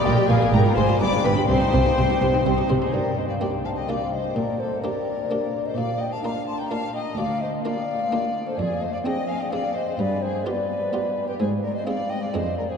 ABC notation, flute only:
X:1
M:3/4
L:1/16
Q:1/4=127
K:Cm
V:1 name="Flute"
d2 f2 g2 a2 =b2 g2 | g8- g2 z c | [K:Gm] d2 e f g2 a g f2 e2 | d2 c2 d6- d e |
f2 g a b2 c' b a2 g2 | f2 e2 f6- f c | [K:Ablyd] d2 e f g2 a g f2 e2 | d2 c2 d6- d =B |
c2 d e f2 g f e2 d c |]